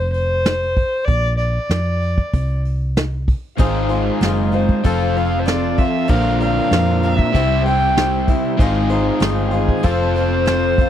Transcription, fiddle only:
0, 0, Header, 1, 2, 480
1, 0, Start_track
1, 0, Tempo, 626305
1, 826, Time_signature, 4, 2, 24, 8
1, 8350, End_track
2, 0, Start_track
2, 0, Title_t, "Fiddle"
2, 0, Program_c, 0, 110
2, 0, Note_on_c, 0, 72, 86
2, 86, Note_off_c, 0, 72, 0
2, 99, Note_on_c, 0, 72, 107
2, 808, Note_on_c, 0, 74, 120
2, 820, Note_off_c, 0, 72, 0
2, 1048, Note_off_c, 0, 74, 0
2, 1052, Note_on_c, 0, 74, 89
2, 1989, Note_off_c, 0, 74, 0
2, 3474, Note_on_c, 0, 72, 76
2, 3962, Note_on_c, 0, 77, 84
2, 3973, Note_off_c, 0, 72, 0
2, 4137, Note_on_c, 0, 72, 65
2, 4149, Note_off_c, 0, 77, 0
2, 4189, Note_on_c, 0, 74, 89
2, 4201, Note_off_c, 0, 72, 0
2, 4433, Note_on_c, 0, 76, 92
2, 4445, Note_off_c, 0, 74, 0
2, 4665, Note_on_c, 0, 77, 107
2, 4676, Note_off_c, 0, 76, 0
2, 4906, Note_off_c, 0, 77, 0
2, 4911, Note_on_c, 0, 77, 98
2, 5403, Note_on_c, 0, 76, 96
2, 5415, Note_off_c, 0, 77, 0
2, 5868, Note_off_c, 0, 76, 0
2, 5873, Note_on_c, 0, 79, 107
2, 6318, Note_off_c, 0, 79, 0
2, 7245, Note_on_c, 0, 67, 60
2, 7299, Note_on_c, 0, 68, 78
2, 7310, Note_off_c, 0, 67, 0
2, 7540, Note_on_c, 0, 72, 91
2, 7552, Note_off_c, 0, 68, 0
2, 7781, Note_off_c, 0, 72, 0
2, 7785, Note_on_c, 0, 72, 110
2, 8350, Note_off_c, 0, 72, 0
2, 8350, End_track
0, 0, End_of_file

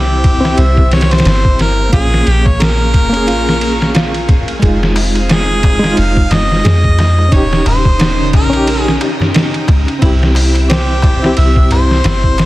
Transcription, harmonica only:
0, 0, Header, 1, 2, 480
1, 0, Start_track
1, 0, Key_signature, -4, "minor"
1, 0, Tempo, 674157
1, 1371, Time_signature, 4, 2, 24, 8
1, 8869, End_track
2, 0, Start_track
2, 0, Title_t, "Harmonica"
2, 0, Program_c, 0, 22
2, 0, Note_on_c, 0, 67, 105
2, 425, Note_on_c, 0, 76, 109
2, 435, Note_off_c, 0, 67, 0
2, 655, Note_off_c, 0, 76, 0
2, 659, Note_on_c, 0, 73, 96
2, 796, Note_on_c, 0, 72, 111
2, 807, Note_off_c, 0, 73, 0
2, 1135, Note_off_c, 0, 72, 0
2, 1143, Note_on_c, 0, 70, 93
2, 1361, Note_off_c, 0, 70, 0
2, 1378, Note_on_c, 0, 68, 110
2, 1635, Note_off_c, 0, 68, 0
2, 1635, Note_on_c, 0, 67, 110
2, 1760, Note_on_c, 0, 73, 93
2, 1771, Note_off_c, 0, 67, 0
2, 1869, Note_on_c, 0, 70, 104
2, 1879, Note_off_c, 0, 73, 0
2, 3060, Note_off_c, 0, 70, 0
2, 3780, Note_on_c, 0, 68, 104
2, 4257, Note_on_c, 0, 77, 114
2, 4268, Note_off_c, 0, 68, 0
2, 4497, Note_on_c, 0, 75, 115
2, 4507, Note_off_c, 0, 77, 0
2, 5218, Note_on_c, 0, 73, 107
2, 5228, Note_off_c, 0, 75, 0
2, 5454, Note_off_c, 0, 73, 0
2, 5466, Note_on_c, 0, 72, 112
2, 5910, Note_off_c, 0, 72, 0
2, 5947, Note_on_c, 0, 70, 96
2, 6282, Note_off_c, 0, 70, 0
2, 6282, Note_on_c, 0, 68, 96
2, 6391, Note_off_c, 0, 68, 0
2, 7615, Note_on_c, 0, 67, 98
2, 8064, Note_off_c, 0, 67, 0
2, 8095, Note_on_c, 0, 76, 110
2, 8317, Note_off_c, 0, 76, 0
2, 8346, Note_on_c, 0, 72, 115
2, 8869, Note_off_c, 0, 72, 0
2, 8869, End_track
0, 0, End_of_file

